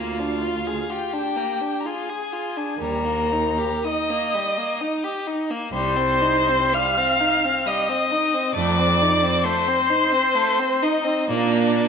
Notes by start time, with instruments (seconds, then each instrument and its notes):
Already playing: cello D2, violin A#3 F5, viola F4
0.19 violin D4
0.42 violin F4
0.67 violin G#4
0.90 violin F4 G5, viola G4
1.13 violin D4
1.36 violin A#3
1.61 violin D4
1.80 violin A#5
1.85 violin F4 G#5, viola G#4
2.10 violin G#4
2.33 violin F4
2.57 violin D4
2.79 cello D#2, violin G3 A#5, viola A#4
3.05 violin A#3
3.33 violin D#4
3.58 violin G4
3.85 violin D#4 D#6, viola D#5
4.10 violin A#3
4.35 violin G3
4.57 violin A#3
4.81 violin D#4
5.04 violin G4
5.27 violin D#4
5.50 violin A#3
5.73 cello C2, violin G3 C6, viola C5
5.96 violin C4
6.22 violin D#4
6.49 violin C4
6.73 violin G3 F6, viola F5
6.97 violin C4
7.21 violin D#4
7.44 violin C4
7.66 violin G3 D#6, viola D#5
7.89 violin C4
8.11 violin D#4
8.34 violin C4
8.54 cello F2, violin A3 D6, viola D5
8.78 violin C4
9.02 violin D#4
9.23 violin C4
9.43 violin A3 C6, viola C5
9.68 violin C4
9.90 violin D#4
10.12 violin C4
10.35 violin A3
10.59 violin C4
10.83 viola D#4, violin D#4 D#5
11.04 violin C4
11.29 cello A#2, violin A#3 D5, viola D4
11.52 violin A#3
11.74 violin A#3